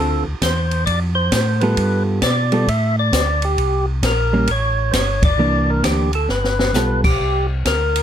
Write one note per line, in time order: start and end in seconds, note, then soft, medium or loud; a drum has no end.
0.00 0.24 D2 medium
0.00 0.24 D3 soft
0.00 0.24 C4 medium
0.00 0.25 F4 soft
0.00 0.24 A4 loud
0.00 0.24 A4 medium
0.27 0.35 D2 soft
0.42 0.86 E2 medium
0.42 0.85 C5 medium
0.42 kick soft
0.42 snare medium
0.42 hi-hat pedal medium
0.42 ride medium
0.71 ride soft
0.86 1.31 F2 medium
0.86 1.00 D5 medium
0.86 kick soft
0.86 ride medium
1.15 1.63 C5 medium
1.32 1.76 A2 medium
1.32 kick soft
1.32 snare medium
1.32 hi-hat pedal medium
1.32 ride medium
1.61 2.20 G3 medium
1.61 2.20 B3 medium
1.61 2.20 F4 medium
1.61 2.21 A4 medium
1.61 2.03 B4 medium
1.61 ride soft
1.77 2.21 G2 medium
1.77 kick soft
1.77 ride medium
2.22 2.66 B2 medium
2.22 2.69 D5 medium
2.22 kick soft
2.22 snare medium
2.22 hi-hat pedal soft
2.22 ride medium
2.52 2.66 G3 medium
2.52 2.67 B3 medium
2.52 2.67 F4 medium
2.52 2.67 A4 medium
2.52 ride soft
2.67 3.12 A2 medium
2.67 2.96 E5 medium
2.67 kick soft
2.67 ride medium
2.99 3.45 D5 loud
3.13 3.57 D2 medium
3.13 kick soft
3.13 snare medium
3.13 hi-hat pedal medium
3.13 ride medium
3.42 3.86 G4 medium
3.42 ride soft
3.58 4.02 C2 medium
3.58 kick soft
3.58 ride soft
4.03 4.47 A#1 medium
4.03 4.51 A#4 medium
4.03 kick soft
4.03 snare medium
4.03 hi-hat pedal soft
4.03 ride medium
4.33 4.47 G3 medium
4.33 4.48 A#3 medium
4.33 4.47 C#4 medium
4.47 4.92 A1 medium
4.47 4.93 C#5 medium
4.47 kick soft
4.47 ride medium
4.91 5.37 G1 medium
4.91 4.95 C5 medium
4.91 kick soft
4.91 snare medium
4.91 hi-hat pedal medium
4.91 ride medium
4.96 5.23 C#5 medium
5.23 5.71 D5 loud
5.23 kick medium
5.23 ride medium
5.38 5.82 C2 medium
5.38 6.08 E3 medium
5.38 6.08 A#3 medium
5.38 6.09 D4 medium
5.70 5.84 A#4 medium
5.83 6.28 D2 medium
5.83 6.12 G4 medium
5.83 kick soft
5.83 snare medium
5.83 hi-hat pedal soft
5.83 ride medium
6.13 6.29 A4 medium
6.13 ride soft
6.28 6.73 G1 medium
6.28 7.01 B4 medium
6.28 snare soft
6.44 snare soft
6.59 snare medium
6.73 7.18 B1 medium
6.73 7.02 G3 soft
6.73 7.02 B3 medium
6.73 7.02 F4 medium
6.73 7.03 A4 medium
6.73 snare medium
6.73 hi-hat pedal medium
7.04 7.47 G4 loud
7.04 kick medium
7.04 crash medium
7.20 7.64 C2 medium
7.20 kick soft
7.65 8.03 D2 medium
7.65 8.03 A#4 medium
7.65 kick soft
7.65 snare medium
7.65 hi-hat pedal soft
7.65 ride medium
7.96 ride medium